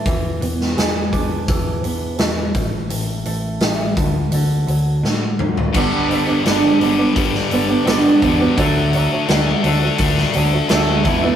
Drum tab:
CC |----------------|----------------|x---------------|----------------|
HH |o-o-o-o-o-o-o-o-|o-o-o-o-o-o-----|--o-o-o-o-o-o-o-|o-o-o-o-o-o-o-o-|
SD |---oo-------o---|----o-------o---|----o----o--o---|----o----o--o---|
T2 |----------------|--------------o-|----------------|----------------|
FT |----------------|---------------o|----------------|----------------|
BD |o-----o-o-----o-|------o---------|o-------o-----o-|o-------o-----o-|